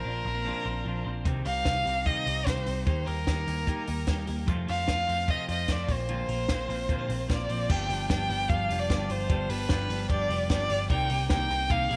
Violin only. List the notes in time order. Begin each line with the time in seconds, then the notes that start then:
Already playing: A#4
1.46 F5
2.06 D#5
2.47 C5
2.86 C5
3.06 A#4
4.69 F5
5.30 D#5
5.52 D#5
5.72 D5
5.93 C5
7.31 D5
7.70 G5
8.09 G5
8.49 F5
8.79 D5
9.11 C5
9.50 B4
10.11 D5
10.52 D5
10.91 G5
11.31 G5
11.71 F5